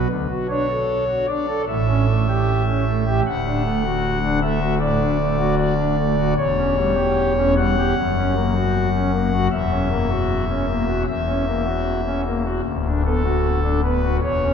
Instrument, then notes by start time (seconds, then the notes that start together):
pipe organ
0.10 D2 D3
0.30 F#4
0.49 D4 C#5
0.69 A4
1.08 F#4
1.28 D4 D5
1.48 A4
1.68 A1 A2 E5
1.88 C#4
2.09 A3
2.28 G4
2.67 C#4
2.86 A3
3.07 G4
3.27 D1 D2 F#5
3.46 D4
3.65 A3
3.84 F#4
4.23 D4
4.42 A3 E5
4.61 F#4
4.80 A2 D5
5.00 D4
5.19 A3
5.39 F#4
5.57 D5
5.79 D4
5.98 A3
6.18 F#4
6.37 E1 E2 C#5
6.57 C#4
6.77 G3
6.95 G4
7.37 C#4
7.57 G3 F#5
7.78 G4
7.97 F#1 F#2
8.17 C#4
8.36 A#3
8.55 F#4
8.94 C#4
9.13 A#3
9.33 F#4
9.51 E1 E2 E5
9.71 C#4
9.91 A#3
10.10 F#4
10.49 C#4
10.68 A#3
10.88 F#4
11.08 E1 E2 E5
11.28 C#4
11.47 A#3
11.66 F#4
12.06 C#4
12.26 A#3
12.45 F#4
12.65 D1 D2
12.85 D4
13.05 B3 A4
13.25 F#4
13.63 D4
13.83 B3 B4
14.04 F#4
14.22 E1 E2 C#5
14.42 C#4